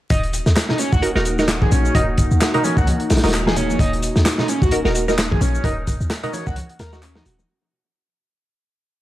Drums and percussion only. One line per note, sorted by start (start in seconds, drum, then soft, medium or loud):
0.10 kick loud
0.10 closed hi-hat medium
0.10 shaker soft
0.23 closed hi-hat soft
0.33 closed hi-hat medium
0.33 shaker medium
0.46 snare medium
0.46 shaker soft
0.56 snare loud
0.56 clap loud
0.56 closed hi-hat medium
0.56 shaker soft
0.69 snare medium
0.69 low conga medium
0.78 closed hi-hat medium
0.78 shaker medium
0.93 kick medium
0.93 shaker soft
1.02 closed hi-hat medium
1.02 shaker soft
1.15 snare soft
1.25 closed hi-hat medium
1.25 shaker medium
1.39 snare soft
1.39 shaker soft
1.48 snare loud
1.48 clap loud
1.48 closed hi-hat medium
1.48 shaker soft
1.62 kick loud
1.62 high conga medium
1.72 closed hi-hat medium
1.72 low conga medium
1.72 shaker medium
1.85 shaker soft
1.95 kick loud
1.95 closed hi-hat medium
1.95 shaker soft
2.18 kick medium
2.18 closed hi-hat medium
2.18 shaker medium
2.31 shaker soft
2.41 snare loud
2.41 clap loud
2.41 closed hi-hat medium
2.41 shaker soft
2.54 closed hi-hat soft
2.54 low conga loud
2.64 closed hi-hat medium
2.64 high conga loud
2.64 shaker medium
2.77 kick loud
2.77 shaker soft
2.87 closed hi-hat medium
2.87 high conga medium
2.87 shaker soft
3.00 closed hi-hat soft
3.10 snare medium
3.10 closed hi-hat medium
3.10 shaker medium
3.17 snare medium
3.17 closed hi-hat medium
3.24 snare loud
3.24 closed hi-hat medium
3.24 shaker soft
3.28 snare medium
3.28 closed hi-hat medium
3.33 clap loud
3.33 closed hi-hat medium
3.33 shaker soft
3.46 snare loud
3.46 high conga medium
3.56 closed hi-hat medium
3.56 low conga medium
3.56 shaker medium
3.70 high conga medium
3.70 shaker soft
3.79 kick loud
3.79 closed hi-hat medium
3.79 shaker soft
3.93 closed hi-hat soft
4.03 closed hi-hat medium
4.03 shaker medium
4.16 snare medium
4.16 shaker soft
4.26 snare loud
4.26 clap loud
4.26 closed hi-hat medium
4.26 shaker soft
4.38 snare medium
4.38 low conga medium
4.48 closed hi-hat medium
4.48 shaker medium
4.62 kick medium
4.62 shaker soft
4.71 closed hi-hat loud
4.71 shaker soft
4.85 snare soft
4.95 closed hi-hat medium
4.95 shaker medium
5.08 snare soft
5.08 shaker soft
5.18 snare loud
5.18 clap loud
5.18 closed hi-hat medium
5.18 shaker soft
5.31 kick loud
5.31 high conga loud
5.41 closed hi-hat medium
5.41 low conga medium
5.41 shaker medium
5.55 shaker soft
5.64 kick loud
5.64 closed hi-hat medium
5.64 shaker soft
5.87 kick loud
5.87 closed hi-hat medium
5.87 shaker medium
6.01 shaker soft
6.10 snare loud
6.10 clap loud
6.10 closed hi-hat medium
6.10 shaker soft
6.24 closed hi-hat soft
6.24 low conga medium
6.33 closed hi-hat medium
6.33 high conga medium
6.33 shaker medium
6.47 kick medium
6.47 shaker soft
6.56 closed hi-hat loud
6.56 high conga medium
6.56 shaker soft
6.69 closed hi-hat soft
6.79 snare loud
6.79 closed hi-hat medium
6.79 shaker medium
6.93 snare soft
6.93 shaker soft
7.03 clap loud
7.03 closed hi-hat medium
7.03 shaker soft
7.15 snare loud
7.15 high conga medium
7.26 closed hi-hat medium
7.26 low conga medium
7.26 shaker medium
7.39 high conga medium
7.39 shaker soft